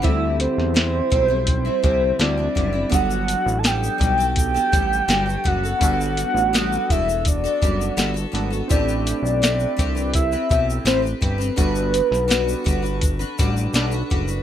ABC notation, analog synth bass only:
X:1
M:4/4
L:1/16
Q:1/4=83
K:G
V:1 name="Analog synth bass" clef=bass
D,,3 E,,3 B,,,4 C,,2 D,,2 F,,,2 | G,,,3 A,,,3 B,,,4 A,,,2 G,,,2 F,,,2 | G,,,3 A,,,3 E,,,4 F,,,2 G,,,2 _A,,,2 | A,,,3 B,,,3 C,,4 B,,,2 A,,,2 G,,,2 |
G,,,3 B,,,3 G,,,4 A,,,2 B,,,2 F,,,2 |]